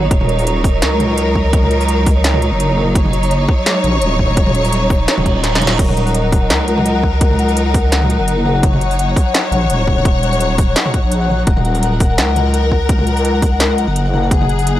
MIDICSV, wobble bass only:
0, 0, Header, 1, 2, 480
1, 0, Start_track
1, 0, Key_signature, -6, "minor"
1, 0, Tempo, 355030
1, 150, Time_signature, 4, 2, 24, 8
1, 20007, End_track
2, 0, Start_track
2, 0, Title_t, "Wobble bass"
2, 0, Program_c, 0, 39
2, 146, Note_on_c, 0, 27, 108
2, 1110, Note_on_c, 0, 37, 102
2, 1130, Note_off_c, 0, 27, 0
2, 3403, Note_on_c, 0, 30, 96
2, 3423, Note_off_c, 0, 37, 0
2, 4697, Note_off_c, 0, 30, 0
2, 5190, Note_on_c, 0, 34, 108
2, 5429, Note_on_c, 0, 27, 99
2, 5450, Note_off_c, 0, 34, 0
2, 5785, Note_off_c, 0, 27, 0
2, 5799, Note_on_c, 0, 27, 105
2, 5900, Note_off_c, 0, 27, 0
2, 5909, Note_on_c, 0, 27, 107
2, 6856, Note_off_c, 0, 27, 0
2, 7000, Note_on_c, 0, 27, 104
2, 7815, Note_off_c, 0, 27, 0
2, 7829, Note_on_c, 0, 27, 107
2, 8787, Note_on_c, 0, 37, 100
2, 8807, Note_off_c, 0, 27, 0
2, 11078, Note_on_c, 0, 30, 96
2, 11099, Note_off_c, 0, 37, 0
2, 12374, Note_off_c, 0, 30, 0
2, 12863, Note_on_c, 0, 34, 110
2, 13105, Note_on_c, 0, 27, 96
2, 13125, Note_off_c, 0, 34, 0
2, 13462, Note_off_c, 0, 27, 0
2, 13475, Note_on_c, 0, 27, 109
2, 13578, Note_off_c, 0, 27, 0
2, 13589, Note_on_c, 0, 27, 106
2, 14536, Note_off_c, 0, 27, 0
2, 14917, Note_on_c, 0, 34, 95
2, 15494, Note_off_c, 0, 34, 0
2, 15507, Note_on_c, 0, 27, 106
2, 16466, Note_on_c, 0, 37, 101
2, 16486, Note_off_c, 0, 27, 0
2, 18755, Note_on_c, 0, 30, 97
2, 18775, Note_off_c, 0, 37, 0
2, 20007, Note_off_c, 0, 30, 0
2, 20007, End_track
0, 0, End_of_file